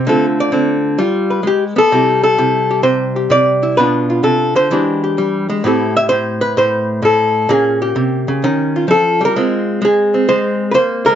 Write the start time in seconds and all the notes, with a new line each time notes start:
0.07 D3 A3 C4 F4 A4
0.40 D5
0.52 D3 C4
0.98 G3 F4
1.30 B4
1.43 G#3
1.47 G4
1.76 B3 A4
1.92 C3 G3 E4 G4
2.23 A4
2.38 C3 E4
2.71 G4
2.83 C3 C5
3.16 G4
3.30 C3 D5
3.63 E4
3.77 B2 B3 D4 F4 B4
4.10 F4
4.23 C3 A4
4.56 D3 C5
4.71 E3 G#3 D4 G4
5.04 G4
5.18 G3
5.49 G#3
5.64 A2 C4 E4 G4 A4
5.97 E5
6.09 A2 C5
6.41 B4
6.57 A2 C5
7.02 A2 A4
7.49 A#2 A#3 C#4 G#4
7.82 G4
7.96 C3
8.28 C#3
8.44 D#3 C#4
8.76 F4
8.88 F3 A4
9.21 G3
9.25 A#4
9.36 G#3 C4 F4
9.82 G#3 G#4
10.14 C4
10.29 G#3 C5
10.71 A#3 B4 C5
11.06 G#3 A#4